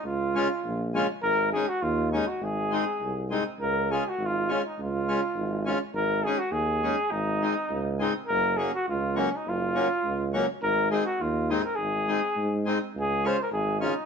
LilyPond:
<<
  \new Staff \with { instrumentName = "Flugelhorn" } { \time 2/4 \key des \major \tempo 4 = 102 f'4. r8 | bes'8 aes'16 ges'16 f'8 ees'16 ges'16 | aes'4. r8 | bes'8 aes'16 ges'16 f'8 des'16 ees'16 |
f'4. r8 | bes'8 aes'16 ges'16 aes'4 | ees'4. r8 | bes'8 aes'16 ges'16 f'8 des'16 ees'16 |
f'4. r8 | bes'8 aes'16 ges'16 f'8 ees'16 bes'16 | aes'4. r8 | aes'8 c''16 bes'16 aes'8 ees'8 | }
  \new Staff \with { instrumentName = "Accordion" } { \time 2/4 \key des \major r8 <aes des' f'>8 r8 <aes des' f'>8 | r8 <aes des' ees'>8 r8 <aes des' ees'>8 | r8 <aes c' ees'>8 r8 <aes c' ees'>8 | r8 <aes des' f'>8 r8 <aes des' f'>8 |
r8 <aes des' f'>8 r8 <aes des' f'>8 | r8 <aes des' ees'>8 r8 <aes des' ees'>8 | r8 <aes c' ees'>8 r8 <aes c' ees'>8 | r8 <ges bes des'>8 r8 <ges bes des'>8 |
r8 <ges bes des'>8 r8 <ges bes des'>8 | r8 <aes c' ees'>8 r8 <aes c' ees'>8 | r8 <aes c' ees'>8 r8 <aes c' ees'>8 | r8 <aes des' f'>8 r8 <aes des' f'>8 | }
  \new Staff \with { instrumentName = "Tuba" } { \clef bass \time 2/4 \key des \major des,4 bes,,4 | aes,,4 ees,4 | aes,,4 c,4 | des,4 aes,,4 |
des,4 aes,,4 | aes,,4 ees,4 | aes,,4 des,4 | ges,,4 des,4 |
ges,,4 des,4 | aes,,4 ees,4 | aes,,4 aes,4 | des,4 aes,,4 | }
>>